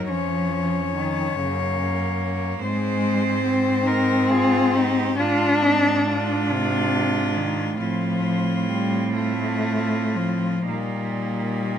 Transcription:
Already playing: F#3 D#4
0.09 F2 F3 C#4 C#5
0.95 D#3
1.37 F#2 C#3 A#3
2.61 G#2 G#3 C4 C5
3.45 C4
3.86 D#4 A#4
4.30 F4 G#4
4.74 D#4 G4
5.18 G#2 D4 F4
5.63 C4 D#4
6.06 D4 F4
6.49 C3
7.36 D#3
7.78 A2 F3 C4 F4
8.69 G3
9.16 A3 F4
10.15 F3
10.67 A#2 G3 A#3 D#4

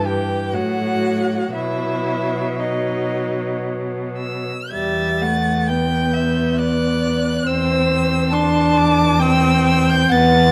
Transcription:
Already playing: G2 E3
0.05 G4 G5
0.53 A2 F#3 F#4 F#5
1.54 B2 F#3 E4 E5
2.59 F#3 D#4 D#5
4.18 E6
4.72 E2 G3 E5 A6
5.22 A3 F#5
5.68 B3 G5 G6
6.13 E5
6.59 D5 F#6
7.45 E2 C4 C5 E6
8.31 D4 A5 C6
8.77 D6
9.19 C4 G5 E6
9.66 E6
9.89 G6
10.09 E2 B3 F#5 A6

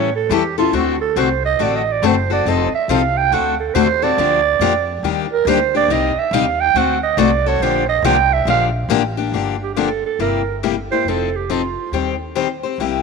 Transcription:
Already playing: A2 C#5
0.15 A4
0.29 E2 E3 G3 C#4 E4 A4
0.33 G4
0.58 C#4 E4 F4 A4
0.73 D2 D3 A3 C4 F#4 A4
1.01 A4
1.16 C2 D3 A3 C4 F#4 A4 C5
1.45 D#5
1.59 A1 D3 A3 C4 F#4 A4 D5
1.75 D#5
1.92 D5
2.02 F#1 D3 A3 C4 F#4 A4
2.06 C5
2.30 C4 F#4 A4 D5
2.45 F1 F3 C4 D#4 A4 D#5
2.72 E5, muted upright bass stroke
2.88 C2 F3 C4 D#4 A4 F5
3.17 G5
3.31 D2 D3 A3 C4 F#4 A4 F#5
3.60 A4
3.74 D#2 D3 A3 C4 F#4 A4 C5
4.02 C4 F#4 A4 D5
4.17 D2 D3 F3 A#3 D4 G4
4.59 F2 D3 F3 A#3 D4 G4
5.03 D#2 D#3 G3 A#3 D4 G4
5.32 A#4
5.45 D2 D#3 G3 A#3 D4 G4 C5
5.75 A#3 D4 G4 D5
5.88 C2 C3 G3 A#3 D#4 G4 D#5
6.15 E5, muted upright bass stroke
6.31 D#2 C3 G3 A#3 D#4 G4 F5
6.60 G5
6.74 D2 D3 A3 C4 F#4 A4 F#5
7.03 D#5
7.17 C2 D3 A3 C4 F#4 A4 D5
7.46 C4 F#4 A4 C#5
7.60 A#1 D3 F3 A#3 D4 G4 C5
7.89 D#5
8.02 C2 D3 F3 A#3 D4 G4 G5
8.33 E5
8.45 A#1 D3 F3 A#3 D4 G4
8.50 F5
8.89 A1 D3 F3 A#3 D4 G4
9.17 A#3 D4 G4
9.32 G1 D3 F3 A#3 D4 G4
9.63 G4
9.74 D3 F3 A#3 D4 G4 A4
10.06 A4
10.19 G1 C3 G3 A#3 E4 G4 A#4
10.63 C3 G3 A#3 E4 G4
10.92 A#3 E4 G4 C5
11.05 F1 F3 C4 D#4
11.09 A4
11.36 G4
11.50 F3 C4 D#4 F4 A4
11.92 D#2 D#3 G3 C4 G4 C5
12.35 D#3 G3 C4 G4 C5
12.63 C4 G4 C5
12.78 C2 C3 G3 A#3 E4 G4

